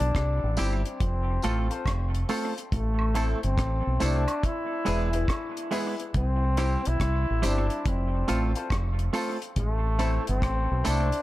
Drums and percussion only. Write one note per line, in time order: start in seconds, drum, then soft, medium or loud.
0.00 closed hi-hat medium
0.15 kick loud
0.15 cross-stick loud
0.15 closed hi-hat medium
0.57 closed hi-hat medium
0.57 tambourine medium
0.85 closed hi-hat medium
1.00 kick loud
1.00 closed hi-hat medium
1.42 closed hi-hat medium
1.42 tambourine soft
1.71 closed hi-hat medium
1.86 kick loud
1.86 cross-stick loud
1.86 closed hi-hat medium
1.86 high woodblock medium
2.15 closed hi-hat medium
2.29 open hi-hat medium
2.29 tambourine medium
2.58 closed hi-hat medium
2.72 kick loud
2.72 closed hi-hat medium
2.99 high woodblock medium
3.15 closed hi-hat medium
3.15 tambourine medium
3.43 closed hi-hat medium
3.58 kick loud
3.58 cross-stick loud
3.58 closed hi-hat medium
4.00 closed hi-hat medium
4.00 tambourine medium
4.28 closed hi-hat soft
4.28 high woodblock medium
4.43 kick loud
4.43 closed hi-hat medium
4.86 closed hi-hat medium
4.86 tambourine soft
5.13 closed hi-hat medium
5.28 kick loud
5.28 cross-stick loud
5.28 closed hi-hat medium
5.28 high woodblock medium
5.57 closed hi-hat medium
5.71 open hi-hat medium
5.71 tambourine medium
6.00 closed hi-hat soft
6.14 kick loud
6.14 closed hi-hat medium
6.57 cross-stick medium
6.57 closed hi-hat medium
6.57 tambourine medium
6.85 closed hi-hat medium
7.00 kick loud
7.00 cross-stick loud
7.00 closed hi-hat medium
7.43 closed hi-hat medium
7.43 tambourine medium
7.70 closed hi-hat soft
7.86 kick loud
7.86 closed hi-hat loud
8.28 closed hi-hat medium
8.28 tambourine medium
8.55 closed hi-hat medium
8.70 kick loud
8.70 cross-stick loud
8.70 closed hi-hat medium
8.70 high woodblock medium
8.99 closed hi-hat soft
9.13 open hi-hat medium
9.13 tambourine medium
9.42 closed hi-hat medium
9.56 kick loud
9.56 closed hi-hat medium
9.99 closed hi-hat medium
9.99 tambourine medium
10.27 closed hi-hat medium
10.42 kick loud
10.42 cross-stick loud
10.42 closed hi-hat medium
10.85 closed hi-hat medium
10.85 tambourine medium
11.12 closed hi-hat medium